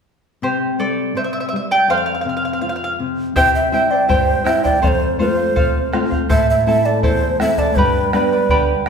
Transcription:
0.42 nylon-string guitar C3, charango G4 C5
0.79 nylon-string guitar G3, charango A4 D5
1.15 nylon-string guitar C3, charango C5 E5
1.24 charango E5
1.33 charango E5
1.40 charango E5
1.49 charango E5
1.53 nylon-string guitar G3, charango E5
1.71 charango D5 G5
1.88 nylon-string guitar F2, charango C5 F5
1.97 charango F5
2.06 charango F5
2.15 charango F5
2.21 charango F5
2.25 nylon-string guitar C3, charango F5
2.37 charango F5
2.45 charango F5
2.53 charango F5
2.61 nylon-string guitar F4, charango F5
2.69 charango F5
2.76 charango F5
2.84 charango F5
3.00 nylon-string guitar C3
3.36 nylon-string guitar C3, charango E4 G4 C5 E5 G5, quena G5, bombo low
3.55 quena E5
3.72 nylon-string guitar G3 C4 E4, charango E4 C5 E5 G5, quena E5
3.91 charango E4 C5 G5, quena D5
4.08 nylon-string guitar G2, charango E4 G4 C5 E5 G5, quena C5, bombo low
4.44 nylon-string guitar G3 C4 E4, charango E4 C5 E5 G5, quena E5, bombo rim
4.64 charango E4 C5 G5, quena D5, bombo low
4.82 nylon-string guitar F2, charango A4 C5 F5, quena D5, bombo low
4.88 quena C5
5.19 nylon-string guitar A3 C4 F4, charango A4 C5 F5, quena C5
5.36 charango C5 F5
5.56 nylon-string guitar C3, charango A4 C5 F5, bombo low
5.92 nylon-string guitar A3 C4 F4, charango A4 C5 F5, bombo rim
6.11 charango C5 F5, bombo low
6.29 nylon-string guitar A2, charango E4 A4 C5 E5 A5, quena E5, bombo low
6.50 quena E5
6.66 nylon-string guitar A3 C4 E4, charango E4 A4 E5 A5, quena E5
6.85 charango E4 A4 A5, quena D5
7.03 nylon-string guitar E2, charango E4 A4 C5 E5 A5, quena C5, bombo low
7.39 nylon-string guitar A3 C4 E4, charango E4 A4 E5 A5, quena E5, bombo rim
7.58 charango E4 A4 A5, quena D5, bombo low
7.76 nylon-string guitar G2, charango G4 B4 D5 G5 B5, quena B4, bombo low
8.13 nylon-string guitar G3 B3 D4, charango B4 D5 G5 B5, quena B4, bombo rim
8.33 charango B4 D5 B5
8.49 nylon-string guitar D3, charango G4 B4 D5 G5 B5, bombo low

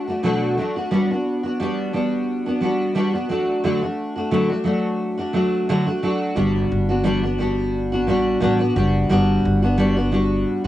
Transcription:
0.07 steel-string acoustic guitar A3 D4 F#4
0.23 steel-string acoustic guitar B2 F#3 A3 D4 F#4
0.57 steel-string acoustic guitar F#3 A3 D4 F#4
0.76 steel-string acoustic guitar A3 D4 F#4
0.91 steel-string acoustic guitar G3 B3 D4 F#4
1.11 steel-string acoustic guitar B3 D4 F#4
1.43 steel-string acoustic guitar B3 D4 F#4
1.60 steel-string acoustic guitar G3 B3 D4 F#4
1.93 steel-string acoustic guitar G3 B3 D4 F#4
2.46 steel-string acoustic guitar B3 D4 F#4
2.61 steel-string acoustic guitar G3 B3 D4 F#4
2.95 steel-string acoustic guitar G3 B3 D4 F#4
3.13 steel-string acoustic guitar B3 D4 F#4
3.29 steel-string acoustic guitar F#3 A3 D4 F#4
3.64 steel-string acoustic guitar D3 F#3 A3 D4 F#4
3.82 steel-string acoustic guitar A3 D4 F#4
4.16 steel-string acoustic guitar A3 D4 F#4
4.31 steel-string acoustic guitar D3 F#3 A3 D4 F#4
4.49 steel-string acoustic guitar A3 D4 F#4
4.64 steel-string acoustic guitar F#3 A3 D4 F#4
5.18 steel-string acoustic guitar A3 D4 F#4
5.33 steel-string acoustic guitar F#3 A3 D4 F#4
5.69 steel-string acoustic guitar D3 F#3 A3 D4 F#4
5.86 steel-string acoustic guitar A3 D4 F#4
6.03 steel-string acoustic guitar F#3 A3 D4 F#4
6.36 upright bass G1, steel-string acoustic guitar G3 B3 D4 F#4
6.72 upright bass G1
6.89 steel-string acoustic guitar B3 D4 F#4
7.04 steel-string acoustic guitar G3 B3 D4 F#4
7.23 steel-string acoustic guitar B3 D4 F#4
7.38 steel-string acoustic guitar G3 B3 D4 F#4
7.92 steel-string acoustic guitar B3 D4 F#4
8.07 upright bass A1, steel-string acoustic guitar G3 B3 D4 F#4
8.40 upright bass A1, steel-string acoustic guitar G3 B3 D4 F#4
8.59 steel-string acoustic guitar B3 D4 F#4
8.76 upright bass F#1, steel-string acoustic guitar G3 B3 D4 F#4
9.09 upright bass G1, steel-string acoustic guitar G3 B3 D4 F#4
9.45 upright bass G1
9.62 steel-string acoustic guitar B3 D4 F#4
9.78 steel-string acoustic guitar G3 B3 D4 F#4
9.96 steel-string acoustic guitar B3 D4 F#4
10.12 steel-string acoustic guitar G3 B3 D4 F#4
10.64 steel-string acoustic guitar F#4

